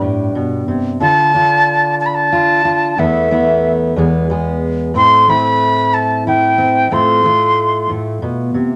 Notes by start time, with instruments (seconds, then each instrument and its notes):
Already playing: steel-string acoustic guitar G2 B3 D4 G4
0.01 steel-string acoustic guitar A2
0.35 steel-string acoustic guitar B2
0.68 steel-string acoustic guitar C3
1.00 steel-string acoustic guitar D3 D4 F4, flute A5
1.34 steel-string acoustic guitar D4 F4
2.01 flute A5
2.06 flute B5
2.15 flute A5
2.32 steel-string acoustic guitar F4
2.65 steel-string acoustic guitar F4
2.97 steel-string acoustic guitar E2 A3 B3 E4, flute E5
3.31 steel-string acoustic guitar A3 B3 E4
3.96 steel-string acoustic guitar E2 G#3 B3 G#4
4.30 steel-string acoustic guitar G#3 B3 G#4
4.94 steel-string acoustic guitar A2 A3 C4 E4, flute C6
5.28 steel-string acoustic guitar A3 C4 E4, flute B5
5.94 flute A5
6.27 steel-string acoustic guitar E4, flute G5
6.58 steel-string acoustic guitar C4
6.91 steel-string acoustic guitar A2 A3 C4 F4, flute C6
7.24 steel-string acoustic guitar A3 F4
7.90 steel-string acoustic guitar A2
8.22 steel-string acoustic guitar B2
8.54 steel-string acoustic guitar C3